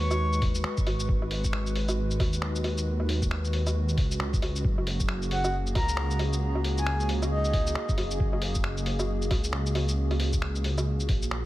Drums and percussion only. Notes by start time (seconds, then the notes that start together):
0.11 low woodblock, shaker
0.33 shaker
0.42 kick, open hi-hat
0.55 shaker
0.64 finger snap
0.77 kick, shaker
0.87 open hi-hat, low woodblock
1.00 shaker
1.09 kick
1.22 low woodblock
1.31 open hi-hat
1.44 kick, shaker
1.53 finger snap
1.67 shaker
1.76 open hi-hat
1.89 low woodblock, shaker
2.11 shaker
2.20 kick, open hi-hat, low woodblock
2.33 shaker
2.42 finger snap
2.56 shaker
2.64 open hi-hat, low woodblock
2.78 shaker
3.00 low woodblock
3.09 open hi-hat
3.22 kick, shaker
3.31 finger snap
3.45 shaker
3.53 open hi-hat
3.67 low woodblock, shaker
3.89 shaker
3.98 kick, open hi-hat
4.11 shaker
4.20 finger snap
4.33 kick, shaker
4.42 open hi-hat, low woodblock
4.56 shaker
4.64 kick
4.78 low woodblock
4.87 open hi-hat
5.00 kick, shaker
5.08 finger snap
5.22 shaker
5.31 open hi-hat
5.44 low woodblock, shaker
5.67 shaker
5.75 kick, open hi-hat, low woodblock
5.89 shaker
5.97 finger snap
6.11 shaker
6.19 open hi-hat, low woodblock
6.33 shaker
6.55 low woodblock
6.64 open hi-hat
6.78 shaker
6.86 finger snap
7.00 shaker
7.09 open hi-hat
7.22 low woodblock, shaker
7.45 shaker
7.53 kick, open hi-hat
7.67 shaker
7.75 finger snap
7.89 kick, shaker
7.98 open hi-hat, low woodblock
8.11 shaker
8.20 kick
8.33 low woodblock
8.42 open hi-hat
8.55 kick, shaker
8.64 finger snap
8.77 shaker
8.86 open hi-hat
8.99 low woodblock, shaker
9.22 shaker
9.31 kick, open hi-hat, low woodblock
9.44 shaker
9.53 finger snap
9.66 shaker
9.75 open hi-hat, low woodblock
9.89 shaker
10.11 open hi-hat, low woodblock
10.20 open hi-hat
10.33 kick, shaker
10.42 finger snap
10.55 shaker
10.64 open hi-hat
10.78 low woodblock, shaker
11.00 shaker
11.09 kick, open hi-hat
11.22 shaker
11.31 finger snap